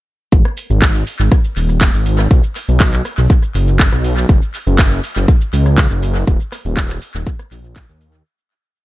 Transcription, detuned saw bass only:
0.32 G#1
0.70 G#1
1.20 G#1
1.56 D#1
1.94 G#1
2.31 B1
2.68 B1
3.18 B1
3.55 F#1
3.92 B1
4.29 F#1
4.67 F#1
5.16 F#1
5.53 C#2
5.91 F#1
6.27 D#1
6.65 D#1
7.15 D#1
7.51 A#1
7.89 D#2

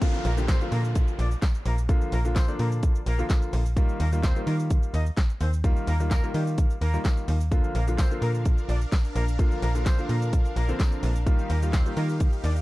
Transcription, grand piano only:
0.01 D3 F3 A#3 F4
0.37 D3 F3 A#3 G4
0.61 D3 F3 A#3 F4
1.89 D3 F3 A#3 F4
2.25 D3 F3 A#3 F4
2.48 D3 F3 A#3 D4
3.18 D3 F3 A#3 F4
3.76 D#3 G3 A#3 F4
4.12 D#3 G3 A#3 F4
4.36 D#3 G3 A#3 F4
5.64 D#3 G3 A#3 F4
6.00 D#3 G3 A#3 F4
6.23 D#3 G3 A#3 F4
6.93 D#3 G3 A#3 F4
7.51 D3 F3 A#3 F4
7.87 D3 F3 A#3 F4
8.11 D3 F3 A#3 F4
9.39 D3 F3 A#3 F4
9.75 D3 F3 A#3 F4
9.98 D3 F3 A#3 F4
10.68 D3 F3 A#3 C4
11.26 D#3 G3 A#3 F4
11.62 D#3 G3 A#3 F4
11.86 D#3 G3 A#3 F4

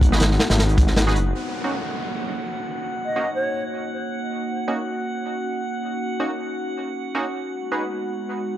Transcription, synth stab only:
0.12 D#4 F#4 G#4 B4
1.07 D#4 F#4 G#4 B4
1.64 A#3 C#4 D#4 F#4
3.16 A#3 C#4 D#4 F#4
4.68 A#3 C#4 D#4 F#4
6.20 A#3 C#4 D#4 F#4
7.15 A#3 C#4 D#4 F#4
7.72 D#4 F#4 G#4 B4

